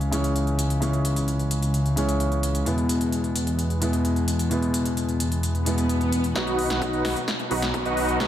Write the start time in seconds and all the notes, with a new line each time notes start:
Already playing: C#2 C#3 E3 G#3 C#4
0.01 closed hi-hat
0.11 C#3 E3 G#3 C#4, closed hi-hat
0.24 closed hi-hat
0.36 closed hi-hat
0.47 closed hi-hat
0.59 closed hi-hat
0.70 closed hi-hat
0.80 C#3 E3 G#3 C#4, closed hi-hat
0.93 closed hi-hat
1.05 closed hi-hat
1.16 closed hi-hat
1.28 closed hi-hat
1.39 closed hi-hat
1.51 closed hi-hat
1.62 closed hi-hat
1.74 closed hi-hat
1.86 closed hi-hat
1.96 C#3 E3 G#3 C#4, closed hi-hat
2.09 closed hi-hat
2.20 closed hi-hat
2.32 closed hi-hat
2.43 closed hi-hat
2.55 closed hi-hat
2.65 E2 B2 E3 G#3 B3, closed hi-hat
2.78 closed hi-hat
2.89 closed hi-hat
3.01 closed hi-hat
3.12 closed hi-hat
3.24 closed hi-hat
3.36 closed hi-hat
3.47 closed hi-hat
3.59 closed hi-hat
3.70 closed hi-hat
3.80 B2 E3 G#3 B3, closed hi-hat
3.93 closed hi-hat
4.05 closed hi-hat
4.16 closed hi-hat
4.28 closed hi-hat
4.39 closed hi-hat
4.50 B2 E3 G#3 B3, closed hi-hat
4.62 closed hi-hat
4.74 closed hi-hat
4.86 closed hi-hat
4.97 closed hi-hat
5.09 closed hi-hat
5.20 closed hi-hat
5.32 closed hi-hat
5.43 closed hi-hat, swell
5.55 closed hi-hat
5.65 B2 E3 G#3 B3, closed hi-hat
5.78 closed hi-hat
5.89 closed hi-hat
6.01 closed hi-hat
6.12 closed hi-hat
6.24 closed hi-hat
6.34 B1 B2 F#3 B3 D#4 F#4 B4 D#5 F#5, kick, snare, closed hi-hat, riser
6.47 closed hi-hat
6.59 open hi-hat
6.70 B1 D#4 F#4 B4 F#5, snare, closed hi-hat
6.82 kick, closed hi-hat
6.93 closed hi-hat
7.05 B1 D#4 F#4 B4 D#5 F#5, snare, open hi-hat
7.16 closed hi-hat
7.28 kick, snare, closed hi-hat
7.39 closed hi-hat
7.50 B1 B2 F#3 B3 D#4 F#4 B4 D#5 F#5, open hi-hat
7.62 snare, closed hi-hat
7.74 kick, closed hi-hat
7.85 B1 D#4 F#4 B4 D#5 F#5, closed hi-hat
7.97 open hi-hat
8.09 closed hi-hat
8.19 B2 F#3 B3 D#4 F#4 B4 D#5 F#5, kick, snare, closed hi-hat